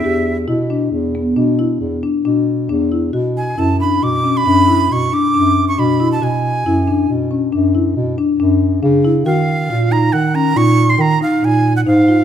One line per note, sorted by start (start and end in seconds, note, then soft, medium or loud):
0.00 0.45 E2 medium
0.00 0.37 E5 medium
0.04 0.41 G4 medium
0.48 0.89 B2 medium
0.48 0.66 E4 medium
0.70 1.07 D4 medium
0.92 1.33 E2 medium
1.15 1.33 B3 medium
1.36 1.77 B2 medium
1.36 1.55 D4 medium
1.59 1.96 E4 medium
1.80 2.01 E2 medium
2.03 2.21 D4 medium
2.25 2.66 B2 medium
2.25 2.62 D4 medium
2.70 3.11 E2 medium
2.70 2.88 D4 medium
2.92 3.10 E4 medium
3.13 3.54 B2 medium
3.13 3.50 F#4 medium
3.37 3.60 G#5 medium
3.58 3.99 F#2 medium
3.58 3.76 E4 medium
3.58 3.80 A5 medium
3.80 4.17 D4 medium
3.80 4.05 B5 medium
4.02 4.43 B2 medium
4.02 4.39 D6 medium
4.24 4.42 C#4 medium
4.37 4.94 B5 medium
4.46 4.87 F#2 medium
4.46 4.65 D4 medium
4.68 5.05 E4 medium
4.91 5.11 B2 medium
4.91 5.15 C#6 medium
5.12 5.31 D4 medium
5.12 5.68 D6 medium
5.34 5.75 F#2 medium
5.34 5.71 D4 medium
5.68 5.81 C#6 medium
5.78 6.19 B2 medium
5.78 5.96 D4 medium
5.78 6.11 B5 medium
6.00 6.18 E4 medium
6.12 6.25 A5 medium
6.22 6.63 B2 medium
6.22 6.59 F#4 medium
6.22 7.10 G#5 medium
6.66 7.06 F#2 medium
6.66 6.84 E4 medium
6.88 7.24 D4 medium
7.09 7.50 B2 medium
7.31 7.49 C#4 medium
7.52 7.93 F#2 medium
7.52 7.71 D4 medium
7.75 8.11 E4 medium
7.96 8.16 B2 medium
8.18 8.36 D4 medium
8.39 8.79 F#2 medium
8.39 8.76 D4 medium
8.82 9.23 C#3 medium
8.82 9.01 D4 medium
9.05 9.23 E4 medium
9.26 9.66 D#3 medium
9.26 9.63 F#4 medium
9.26 9.93 F5 medium
9.70 10.10 A#2 medium
9.70 9.88 F4 medium
9.91 10.27 D#4 medium
9.91 10.14 A#5 medium
10.13 10.53 D#3 medium
10.13 10.37 F#5 medium
10.35 10.53 C#4 medium
10.35 10.58 A#5 medium
10.56 10.96 A#2 medium
10.56 10.74 D#4 medium
10.56 10.91 C#6 medium
10.77 11.14 F4 medium
10.90 11.03 C6 medium
10.98 11.19 D#3 medium
10.98 11.22 A#5 medium
11.21 11.39 D#4 medium
11.21 11.46 F5 medium
11.42 11.83 A#2 medium
11.42 11.79 D#4 medium
11.42 11.76 G#5 medium
11.76 11.81 F#5 medium
11.86 12.24 G#2 medium
11.86 12.05 D#4 medium
11.86 12.24 F5 medium
12.08 12.24 F4 medium